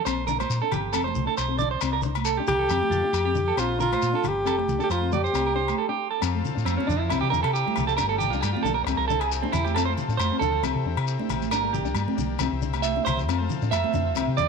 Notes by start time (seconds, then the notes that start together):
0.05 A#1 C4 C5, low agogo, shekere
0.27 D4 A#4, shekere
0.40 C5, high conga, low agogo, shekere
0.50 A#2, shekere
0.62 D4 A4
0.71 G1 G4, low conga, low agogo, shekere
0.93 F1 C4 A4, low conga, low agogo, shekere
1.04 C5, muted nylon-string guitar stroke, high conga
1.15 C2, high conga, shekere
1.27 D4 A4
1.37 B1 C5, low agogo, shekere
1.48 C4
1.59 D4 D5, low conga, shekere
1.71 C5
1.81 C2 C4, low agogo, shekere
1.93 A#4
2.02 D4, muted clean electric guitar stroke, shekere
2.15 high conga, low agogo, shekere
2.25 A4, shekere
2.37 D4 G4
2.47 C2 G4, low conga, low agogo, shekere
2.59 A4
2.69 F2 C4 G4, low conga, low agogo, shekere
2.81 A3, high conga
2.90 F2 F4, high conga, shekere
3.04 D4
3.13 F2 G4, low agogo, shekere
3.25 C4 G4
3.35 D4, low conga, shekere
3.48 A4
3.56 A#1 C4 F4 C5, low agogo, shekere
3.78 D4 F4 A#4, shekere
3.92 C5, high conga, low agogo, shekere
4.02 A#2, shekere
4.13 D4 A4
4.24 G1, muted clean electric guitar stroke, low conga, low agogo, shekere
4.28 G4
4.45 F1 C4 A4, low conga, low agogo, shekere
4.57 A3, muted clean electric guitar stroke, high conga
4.68 C2, high conga, low conga, shekere
4.79 D4 A4, shekere
4.83 G4
4.90 F2 F4 C5, low agogo, shekere
5.01 C4
5.11 A3 G4 D5, low conga, shekere
5.24 C5, shekere
5.33 C2 C4, high conga, low agogo, shekere
5.47 A#4
5.55 D4 C5
5.68 high conga, low agogo, shekere
5.78 A4
5.89 D4 G4
6.11 A4
6.21 F2 C4 F4 A4, low agogo, shekere
6.35 A3
6.45 low conga, shekere
6.55 A2 D4, shekere
6.65 F2 C4, high conga, low agogo, shekere
6.77 C4 C#4, high conga
6.87 F2 D4, low conga, shekere
6.99 E4
7.10 C2 C4 E4 G4, low conga, low agogo, shekere
7.21 C3 G4
7.30 E2 D4 A#4, shekere
7.43 C3 A4, low agogo
7.53 G4, shekere
7.66 G3, high conga
7.76 C2, low conga, low agogo, shekere
7.87 A4, high conga, shekere
7.97 G1 A#3 D4 A#4, low agogo, shekere
8.09 A#3 A4
8.18 G4, low conga, shekere
8.30 C2 D4 F4, shekere
8.41 G2 G4, high conga, low agogo, shekere
8.53 C4 F4, high conga
8.63 A#1 D4 A4, low conga, shekere
8.74 A#4
8.84 C2 C4 E4, muted clean electric guitar stroke, low conga, low agogo, shekere
8.97 C2 A#4
9.08 D4 A4, shekere
9.20 G#4, low agogo
9.32 shekere
9.42 C4 D4, high conga
9.52 E2 E4, low conga, low agogo, shekere
9.64 G4, high conga, shekere
9.75 F2 C4 F4 A4, low agogo, shekere
9.85 A3 C5
9.97 low conga, shekere
10.08 A2 D4, shekere
10.17 F2 C5, high conga, low agogo, shekere
10.32 C4
10.39 D2 D4 A4, low conga, shekere
10.63 C2 C4 E4 G4, low conga, low agogo, shekere
10.75 C3
10.85 E2 D4
10.97 C3, low agogo
11.07 shekere
11.19 D4, high conga
11.29 A1, low conga, low agogo, shekere
11.42 high conga, shekere
11.50 G1 A#3 D4 A#4, low agogo, shekere
11.64 A#3
11.73 G4, low conga, shekere
11.85 C2 D4, shekere
11.94 G2, high conga, low agogo, shekere
12.08 C4, high conga
12.17 B1 D4, low conga, shekere
12.39 C2 C4 E4, low conga, low agogo, shekere
12.52 C2
12.62 D4, shekere
12.73 high conga, low agogo, shekere
12.82 E5, high conga, shekere
12.96 D4, high conga
13.05 C2 C5, low conga, low agogo, shekere
13.18 low conga, shekere
13.28 F2 C4 F4 A4, low agogo, shekere
13.40 A3
13.49 low conga, shekere
13.62 A2 D4, shekere
13.71 F2 E5, high conga, low agogo, shekere
13.84 muted nylon-string guitar stroke, high conga
13.94 F2 D4, low conga, shekere
14.15 C2 C4 E4 G4, low conga, low agogo, shekere
14.28 C3
14.37 E2 D4 D5, shekere